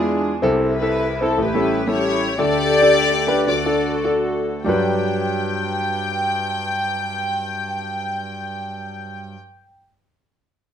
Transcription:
0.00 0.39 E2 medium
0.00 0.39 E3 medium
0.00 0.30 G#3 medium
0.00 0.40 B3 medium
0.00 0.31 D4 medium
0.00 0.40 D4 medium
0.00 0.31 E4 medium
0.00 0.31 F4 medium
0.00 0.28 G#4 medium
0.00 0.31 G#4 medium
0.42 1.35 C2 medium
0.42 1.35 C3 medium
0.42 0.72 C4 loud
0.42 0.72 E4 medium
0.42 0.73 A4 loud
0.76 1.36 E4 medium
0.76 1.20 B4 medium
0.82 1.04 C4 medium
0.82 1.04 E4 medium
0.82 1.05 A4 medium
1.21 1.38 C4 medium
1.21 1.38 E4 medium
1.21 1.38 A4 medium
1.21 1.40 A4 medium
1.38 2.35 A1 medium
1.38 2.35 A2 medium
1.38 1.88 E4 medium
1.38 1.88 G4 medium
1.38 1.90 B4 medium
1.54 1.78 G3 medium
1.54 1.79 A3 medium
1.54 1.79 C#4 medium
1.54 1.79 E4 medium
1.54 1.79 A4 medium
1.87 2.25 G3 medium
1.87 2.26 A3 medium
1.87 2.26 C#4 medium
1.87 2.26 E4 medium
1.87 2.36 E4 medium
1.87 2.36 G4 medium
1.87 2.26 A4 medium
1.91 2.37 C#5 loud
2.38 3.43 D2 medium
2.38 3.43 D3 medium
2.38 2.71 D4 medium
2.38 2.71 G4 medium
2.38 3.44 G4 medium
2.38 2.72 A4 medium
2.38 3.44 A4 medium
2.38 3.45 D5 loud
2.82 3.07 D4 medium
2.82 3.08 G4 medium
2.82 3.08 A4 medium
3.27 3.46 D4 medium
3.27 3.46 G4 medium
3.27 3.46 B4 loud
3.47 4.63 D2 medium
3.47 4.63 D3 medium
3.47 4.63 F#4 medium
3.47 4.63 A4 medium
3.47 4.02 D5 medium
3.66 3.94 D4 medium
3.66 3.94 F#4 medium
3.66 3.94 A4 medium
4.04 4.50 D4 medium
4.04 4.50 F#4 medium
4.04 4.51 A4 medium
4.64 9.34 G2 medium
4.64 9.34 F#3 medium
4.64 9.31 G3 medium
4.64 9.33 D4 medium
4.64 9.33 G5 loud
4.69 9.36 B4 loud

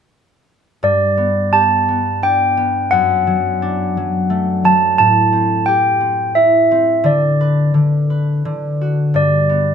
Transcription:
0.83 2.97 G2 medium
0.83 1.56 D5 medium
1.17 1.88 B3 soft
1.53 2.98 G4 soft
1.53 2.19 A5 medium
1.89 2.57 B3 soft
2.22 3.62 D4 soft
2.22 2.94 G5 medium
2.57 5.39 B3 soft
2.91 5.02 F#2 medium
2.91 4.67 F#5 medium
3.27 3.96 F#3 soft
3.62 6.42 D4 medium
3.97 4.63 F#3 soft
4.30 7.63 A3 medium
4.64 5.02 F#3 medium
4.64 4.97 A5 medium
4.98 7.09 A2 medium
4.98 5.63 A5 medium
5.33 6.00 C4 soft
5.66 8.03 G4 medium
5.66 6.31 G5 medium
6.00 6.71 C4 soft
6.35 8.97 E4 soft
6.35 7.06 E5 medium
6.71 7.47 C4 soft
7.04 7.73 D3 medium
7.04 7.71 D5 medium
7.41 8.10 B4 soft
7.74 8.44 D3 soft
8.10 9.75 B4 soft
8.45 9.20 D3 medium
8.81 9.20 F#4 soft
9.14 9.75 G2 medium
9.14 9.75 D5 medium
9.49 9.75 B3 soft

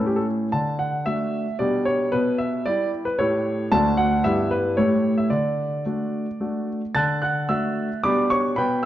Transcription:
0.00 0.50 A2 soft
0.00 0.48 A3 soft
0.00 0.48 C#4 soft
0.00 0.49 E4 soft
0.06 0.16 G4 soft
0.16 0.25 A4 medium
0.52 1.04 D3 soft
0.52 0.76 A5 medium
0.79 1.05 F#5 medium
1.06 1.44 A3 soft
1.06 1.44 D4 soft
1.06 1.45 F#4 soft
1.06 1.55 E5 medium
1.59 2.11 B2 medium
1.59 2.08 G3 soft
1.59 2.09 D4 soft
1.59 2.09 G4 soft
1.59 1.83 D5 medium
1.85 2.12 C#5 medium
2.12 2.64 B2 medium
2.12 2.36 B4 medium
2.38 2.65 E5 medium
2.66 3.04 G3 soft
2.66 3.04 E4 soft
2.66 3.04 G4 soft
2.66 2.89 D5 medium
3.05 3.18 B4 medium
3.19 3.70 A2 medium
3.19 3.67 A3 soft
3.19 3.68 E4 soft
3.19 3.68 G4 soft
3.19 3.71 C#5 medium
3.72 4.23 D2 medium
3.72 4.21 A3 soft
3.72 4.21 D4 soft
3.72 4.21 F#4 soft
3.72 3.95 A5 loud
3.97 4.24 F#5 medium
4.24 4.76 G2 medium
4.24 4.74 B3 soft
4.24 4.74 E4 soft
4.24 4.74 G4 soft
4.24 4.51 E5 medium
4.51 4.78 B4 medium
4.77 5.30 A2 soft
4.77 5.27 A3 soft
4.77 5.28 E4 soft
4.77 5.28 G4 soft
4.77 5.13 C#5 medium
5.18 5.31 E5 medium
5.30 5.84 D3 soft
5.30 6.68 D5 medium
5.86 6.25 A3 soft
5.86 6.25 D4 soft
5.86 6.26 F#4 soft
6.40 6.80 A3 soft
6.40 6.80 D4 soft
6.40 6.80 F#4 soft
6.95 7.47 D3 medium
6.95 7.21 A5 medium
6.95 7.20 F#6 medium
6.95 7.22 A6 medium
7.22 7.48 F#5 medium
7.22 7.38 F#6 medium
7.49 7.87 A3 soft
7.49 7.88 D4 soft
7.49 7.88 F#4 soft
7.49 7.99 E5 soft
7.49 7.98 E6 medium
8.04 8.55 B2 soft
8.04 8.53 G3 soft
8.04 8.53 D4 soft
8.04 8.54 G4 soft
8.04 8.29 D5 medium
8.04 8.29 B5 medium
8.04 8.30 D6 medium
8.30 8.56 C#5 medium
8.30 8.54 C#6 medium
8.56 8.85 B2 medium
8.56 8.82 B4 medium
8.56 8.82 G5 medium
8.56 8.80 B5 medium

